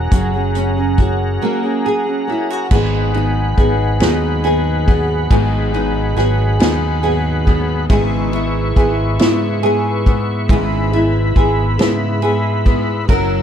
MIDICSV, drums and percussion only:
0, 0, Header, 1, 2, 480
1, 0, Start_track
1, 0, Tempo, 864553
1, 66, Time_signature, 6, 3, 24, 8
1, 7453, End_track
2, 0, Start_track
2, 0, Title_t, "Drums"
2, 64, Note_on_c, 9, 42, 80
2, 65, Note_on_c, 9, 36, 111
2, 119, Note_off_c, 9, 42, 0
2, 121, Note_off_c, 9, 36, 0
2, 305, Note_on_c, 9, 42, 48
2, 360, Note_off_c, 9, 42, 0
2, 542, Note_on_c, 9, 42, 41
2, 545, Note_on_c, 9, 36, 74
2, 598, Note_off_c, 9, 42, 0
2, 601, Note_off_c, 9, 36, 0
2, 1504, Note_on_c, 9, 49, 96
2, 1505, Note_on_c, 9, 36, 112
2, 1559, Note_off_c, 9, 49, 0
2, 1561, Note_off_c, 9, 36, 0
2, 1745, Note_on_c, 9, 51, 44
2, 1801, Note_off_c, 9, 51, 0
2, 1986, Note_on_c, 9, 36, 87
2, 1986, Note_on_c, 9, 51, 37
2, 2041, Note_off_c, 9, 36, 0
2, 2041, Note_off_c, 9, 51, 0
2, 2222, Note_on_c, 9, 51, 70
2, 2230, Note_on_c, 9, 38, 108
2, 2278, Note_off_c, 9, 51, 0
2, 2285, Note_off_c, 9, 38, 0
2, 2464, Note_on_c, 9, 51, 42
2, 2520, Note_off_c, 9, 51, 0
2, 2708, Note_on_c, 9, 36, 83
2, 2710, Note_on_c, 9, 51, 44
2, 2764, Note_off_c, 9, 36, 0
2, 2766, Note_off_c, 9, 51, 0
2, 2946, Note_on_c, 9, 36, 114
2, 2947, Note_on_c, 9, 51, 68
2, 3001, Note_off_c, 9, 36, 0
2, 3002, Note_off_c, 9, 51, 0
2, 3189, Note_on_c, 9, 51, 42
2, 3244, Note_off_c, 9, 51, 0
2, 3427, Note_on_c, 9, 51, 35
2, 3432, Note_on_c, 9, 38, 32
2, 3483, Note_off_c, 9, 51, 0
2, 3488, Note_off_c, 9, 38, 0
2, 3665, Note_on_c, 9, 51, 72
2, 3673, Note_on_c, 9, 38, 107
2, 3721, Note_off_c, 9, 51, 0
2, 3729, Note_off_c, 9, 38, 0
2, 3906, Note_on_c, 9, 51, 40
2, 3962, Note_off_c, 9, 51, 0
2, 4147, Note_on_c, 9, 36, 75
2, 4149, Note_on_c, 9, 51, 43
2, 4203, Note_off_c, 9, 36, 0
2, 4205, Note_off_c, 9, 51, 0
2, 4385, Note_on_c, 9, 36, 117
2, 4385, Note_on_c, 9, 51, 72
2, 4441, Note_off_c, 9, 36, 0
2, 4441, Note_off_c, 9, 51, 0
2, 4625, Note_on_c, 9, 51, 43
2, 4680, Note_off_c, 9, 51, 0
2, 4866, Note_on_c, 9, 36, 86
2, 4867, Note_on_c, 9, 51, 39
2, 4921, Note_off_c, 9, 36, 0
2, 4922, Note_off_c, 9, 51, 0
2, 5105, Note_on_c, 9, 51, 70
2, 5112, Note_on_c, 9, 38, 116
2, 5160, Note_off_c, 9, 51, 0
2, 5168, Note_off_c, 9, 38, 0
2, 5347, Note_on_c, 9, 51, 43
2, 5403, Note_off_c, 9, 51, 0
2, 5587, Note_on_c, 9, 36, 80
2, 5591, Note_on_c, 9, 51, 42
2, 5643, Note_off_c, 9, 36, 0
2, 5647, Note_off_c, 9, 51, 0
2, 5826, Note_on_c, 9, 36, 119
2, 5828, Note_on_c, 9, 51, 69
2, 5881, Note_off_c, 9, 36, 0
2, 5884, Note_off_c, 9, 51, 0
2, 6070, Note_on_c, 9, 51, 44
2, 6125, Note_off_c, 9, 51, 0
2, 6307, Note_on_c, 9, 36, 88
2, 6308, Note_on_c, 9, 51, 36
2, 6362, Note_off_c, 9, 36, 0
2, 6363, Note_off_c, 9, 51, 0
2, 6546, Note_on_c, 9, 51, 72
2, 6554, Note_on_c, 9, 38, 109
2, 6602, Note_off_c, 9, 51, 0
2, 6610, Note_off_c, 9, 38, 0
2, 6785, Note_on_c, 9, 51, 43
2, 6840, Note_off_c, 9, 51, 0
2, 7029, Note_on_c, 9, 36, 82
2, 7030, Note_on_c, 9, 51, 41
2, 7084, Note_off_c, 9, 36, 0
2, 7085, Note_off_c, 9, 51, 0
2, 7266, Note_on_c, 9, 51, 69
2, 7267, Note_on_c, 9, 36, 114
2, 7322, Note_off_c, 9, 36, 0
2, 7322, Note_off_c, 9, 51, 0
2, 7453, End_track
0, 0, End_of_file